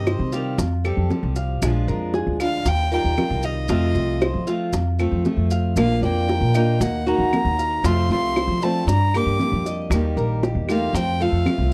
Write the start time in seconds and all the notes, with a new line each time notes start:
Already playing: G2 C3 D#3 G3 C4 G4 D#5
0.07 C5, high bongo, claves, maracas
0.19 C3
0.32 D#3 G3 C4 F4 G4, high bongo, maracas
0.58 F2, muted steel-string acoustic guitar stroke, high bongo, maracas
0.84 G3 C4 G4 A4, claves, maracas
0.97 F2
1.10 F3 G3 C4 G4, high bongo, low bongo, maracas
1.23 C2
1.36 F5, high bongo, maracas
1.62 A#1 F3 G#3 D4 F4, high bongo, claves, maracas
1.88 F2 A#4, high bongo, maracas
2.14 G#4, high bongo, maracas
2.27 D2
2.40 G#3 D4 F4 F5, high bongo, claves, maracas
2.65 D#2 G5, muted steel-string acoustic guitar stroke, high bongo, maracas
2.92 G3 D#4 F4 A#4 G5, maracas
3.04 D#2
3.17 D#3 G3 D#4 F4, high bongo, low bongo, claves, maracas
3.30 C2
3.43 D#5 F5, high bongo, maracas
3.68 F2 C3 F3 A3 C4 F4, high bongo, maracas
3.95 C2, high bongo, maracas
4.21 C5, high bongo, claves, maracas
4.34 F3
4.47 F3 A3 C4 F4, high bongo, maracas
4.73 F2, muted steel-string acoustic guitar stroke, high bongo, maracas
4.99 F3 A3 C4 F4 A4, claves, maracas
5.12 F2
5.24 F3 A3 C4 F4, high bongo, low bongo, maracas
5.37 F2
5.51 F5, high bongo, maracas
5.76 A#1 F3 A#3 D4 F4 F5, high bongo, claves, maracas
6.02 F2 A#3 D5 G5, high bongo, maracas
6.29 A#4, high bongo, maracas
6.40 A#2
6.54 A#3 D4 D#4 F4, high bongo, claves, maracas
6.80 D#2 A#3 F#5, muted steel-string acoustic guitar stroke, high bongo, maracas
7.06 A#3 D#4 F#4 A#5, maracas
7.19 D#2
7.33 D#3 A#3 D#4 F#4, high bongo, low bongo, claves, maracas
7.45 D#2
7.59 F5, high bongo, maracas
7.84 F2 C3 F3 A3 C4 F4 C6, high bongo, maracas
8.09 C2 F4 C6, high bongo, maracas
8.36 C5, high bongo, claves, maracas
8.48 F3
8.62 F3 A3 C4 D4 F4 A5, high bongo, maracas
8.87 G2 D4 A#5, muted steel-string acoustic guitar stroke, high bongo, maracas
9.14 G3 A#3 D4 G4 D6, claves, maracas
9.26 G2
9.40 G3 A#3 D4 G4, high bongo, low bongo, maracas
9.52 F2
9.66 D#5, high bongo, maracas
9.90 D#2 D#3 G3 A#3 D#4 G4, high bongo, claves, maracas
10.17 A#1 A#4, high bongo, maracas
10.43 G4, high bongo, maracas
10.55 E2
10.69 G3 A3 A#3 D#4 F4 G4 F5, high bongo, claves, maracas
10.93 F2 C4 G5, muted steel-string acoustic guitar stroke, high bongo, maracas
11.20 F3 A3 C4 F4 A4 F5, maracas
11.32 F2
11.46 F3 A3 C4 F4, high bongo, low bongo, claves, maracas
11.58 C2